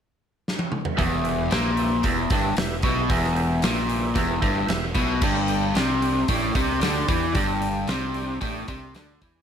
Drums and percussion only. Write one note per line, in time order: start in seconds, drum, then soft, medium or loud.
0.48 snare medium
0.59 high tom medium
0.72 mid tom medium
0.85 floor tom medium
0.99 kick loud
0.99 open hi-hat medium
1.25 open hi-hat medium
1.51 snare loud
1.51 open hi-hat medium
1.77 open hi-hat medium
2.03 kick medium
2.03 open hi-hat medium
2.30 kick loud
2.30 open hi-hat medium
2.57 snare loud
2.57 open hi-hat medium
2.82 kick loud
2.82 open hi-hat medium
3.10 kick loud
3.10 open hi-hat medium
3.24 snare soft
3.36 open hi-hat medium
3.62 snare loud
3.62 open hi-hat medium
3.89 open hi-hat medium
4.16 kick medium
4.16 open hi-hat medium
4.42 kick loud
4.42 open hi-hat medium
4.68 snare loud
4.68 open hi-hat medium
4.95 kick loud
4.95 open hi-hat medium
5.21 kick loud
5.21 crash loud
5.48 open hi-hat medium
5.75 snare loud
5.75 open hi-hat medium
6.02 open hi-hat medium
6.28 kick loud
6.28 open hi-hat medium
6.55 kick loud
6.55 open hi-hat medium
6.81 snare loud
6.81 open hi-hat medium
7.08 kick loud
7.08 open hi-hat medium
7.35 kick loud
7.35 open hi-hat medium
7.62 open hi-hat medium
7.88 snare loud
7.88 open hi-hat medium
8.14 open hi-hat medium
8.41 kick loud
8.41 open hi-hat medium
8.68 kick loud
8.68 open hi-hat medium
8.95 snare loud
8.95 open hi-hat medium
9.21 kick loud
9.21 open hi-hat medium